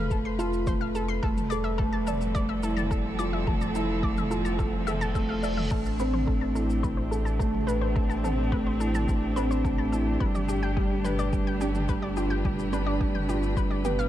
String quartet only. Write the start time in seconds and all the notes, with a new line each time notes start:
Already playing: B4
1.23 G3
1.30 C4
1.91 F3 A4
5.71 A3
5.78 D4
6.49 G4
7.52 C4
11.41 B4